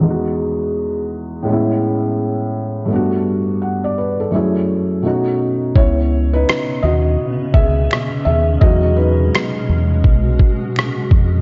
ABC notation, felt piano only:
X:1
M:4/4
L:1/16
Q:"Swing 16ths" 1/4=84
K:C#m
V:1 name="Felt piano"
z16 | z4 f =d B A2 z6 z | [Ec]3 [DB]3 [Fd]4 [Ge]4 [Ge]2 | [Fd]2 [DB]12 z2 |]
V:2 name="Felt piano"
[E,,G,B,DF]8 [A,,G,B,CE]8 | [=G,,A,B,=DF]8 [F,,A,CE^G]4 [B,,A,C^DF]4 | [C,B,C]16 | [F,G,D]2 z12 z2 |]